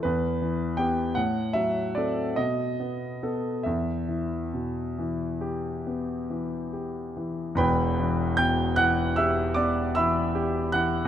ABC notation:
X:1
M:9/8
L:1/8
Q:3/8=49
K:Em
V:1 name="Grand piano"
B2 g f e d ^d3 | e6 z3 | [Bgb]2 [gg'] [ff'] [ee'] [dd'] [ebe']2 [ff'] |]
V:2 name="Grand piano" clef=bass
E,, E, [B,G] A,, F, [CA] B,, B, [B,A] | E,, E, B,, E, G B, E, G E, | [E,,,E,,] E, B,, E, G B, E, G E, |]